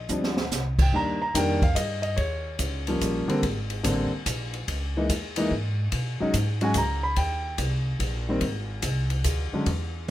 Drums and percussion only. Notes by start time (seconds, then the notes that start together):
0.09 hi-hat pedal
0.24 snare
0.37 snare
0.52 snare, hi-hat pedal
0.79 kick, crash
0.93 kick
1.34 kick, hi-hat pedal, ride
1.62 kick, ride
1.76 kick, hi-hat pedal, ride
2.03 ride
2.17 kick, ride
2.59 kick, hi-hat pedal, ride
2.87 ride
3.01 kick, hi-hat pedal, ride
3.29 ride
3.43 kick, ride
3.70 ride
3.84 kick, hi-hat pedal, ride
4.26 kick, hi-hat pedal, ride
4.54 ride
4.68 kick, ride
5.09 kick, hi-hat pedal, ride
5.36 ride
5.51 kick
5.92 kick, ride
6.34 kick, hi-hat pedal, ride
6.61 ride
6.74 kick, hi-hat pedal, ride
7.16 kick, ride
7.58 kick, hi-hat pedal, ride
8.00 kick, ride
8.41 kick, ride
8.82 kick, hi-hat pedal, ride
9.10 ride
9.24 kick, hi-hat pedal, ride
9.66 kick, ride